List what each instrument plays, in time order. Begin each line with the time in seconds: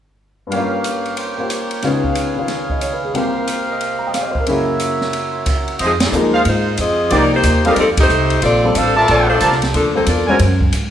0.47 grand piano G2 G3, trumpet section C#5
0.51 grand piano A#3 C#4, trumpet section G4 A#4 F5, ride
0.58 grand piano F4
0.84 hi-hat pedal, ride
1.05 ride
1.17 trumpet section C5 F5 G5, ride
1.38 grand piano A#3 F4 G4 C5
1.50 hi-hat pedal, ride
1.71 ride
1.82 grand piano C#2 C#3 B3 D#4 F4, trumpet section G#4 B4 C#5 F5, snare, ride
2.04 kick
2.15 hi-hat pedal, ride
2.36 grand piano D#3 C#4 F4
2.48 snare, ride
2.70 grand piano D#5, kick
2.81 grand piano C#5, hi-hat pedal, ride
2.93 grand piano B4
3.04 grand piano G#4
3.14 grand piano C2 C3 A#3 F4 G4, trumpet section G4 A#4 C5 F5, ride
3.47 hi-hat pedal, ride
3.69 trumpet section A#4 D#5
3.81 ride
3.99 grand piano A#5
4.07 grand piano G5
4.14 grand piano F5, snare, hi-hat pedal, ride
4.22 grand piano D#5
4.31 grand piano C5
4.35 kick
4.40 grand piano A#4
4.47 grand piano F#2 C#3 A#3 E4 G#4, trumpet section F#4 A#4 C#5 E5, ride
4.80 hi-hat pedal, ride
5.01 snare
5.13 ride
5.30 trumpet section C6
5.46 trumpet section A#5, kick, hi-hat pedal, crash, ride
5.62 trumpet section F#5
5.68 ride
5.79 upright bass F2, saxophone section C4, trumpet section F4 G#4 C5 D#5, ride
5.83 saxophone section F3 D#4 G#4
6.00 saxophone section G#3 D#4 A#4, snare, ride
6.04 saxophone section F4
6.12 upright bass D#2, grand piano F3 A#3 D#4 G#4, hi-hat pedal
6.33 trumpet section F4 G#4 C5 F5
6.45 upright bass G#2, saxophone section G#3 D#4 F4 C5, ride
6.77 upright bass F2, saxophone section C4 F4 G#4 D#5, hi-hat pedal, ride
7.10 upright bass C2, grand piano F3 A#3 D#4 G4, saxophone section A#3 D#4 G4 D5, trumpet section D#4 A#4 C5 D5, ride
7.33 saxophone section A#3 D#4 G4 C5
7.43 upright bass D#2, hi-hat pedal, ride
7.64 grand piano G3 C4 F4 A4, saxophone section G3 D4 D#4 A#4, trumpet section G4 A4 D#5 F5, ride
7.76 upright bass F2, saxophone section G3 C4 D#4 A4, ride
7.97 saxophone section A3 D#4 G4 C5, kick, ride
8.09 upright bass C2, hi-hat pedal
8.30 ride
8.42 upright bass A#1, saxophone section C4 F4 A4 D5, ride
8.64 grand piano G3 C4 F4 A4
8.75 upright bass A1, saxophone section D4 A4 C5 F5, hi-hat pedal, ride
8.96 saxophone section C4 F4 A4 E5, trumpet section A#4 C5 D5 A5
9.08 upright bass A#1, saxophone section C4 F4 A4 D5, ride
9.28 saxophone section A3 D4 F4 C5
9.40 upright bass C2, trumpet section A#4 C5 D5 A5, hi-hat pedal, ride
9.52 snare
9.62 snare, ride
9.73 upright bass D2, saxophone section F3 A#3 D4 A4, ride
9.94 grand piano G3 C4 F4 A4, saxophone section A#3 F4 A4 C5
10.06 upright bass E2, saxophone section D4 F4 A4 A#4, hi-hat pedal, ride
10.27 grand piano G#3 C#4 F#4 C5, trumpet section A#4 E5 F#5 G#5
10.39 upright bass F#2, ride
10.61 kick
10.72 upright bass G#2, hi-hat pedal, ride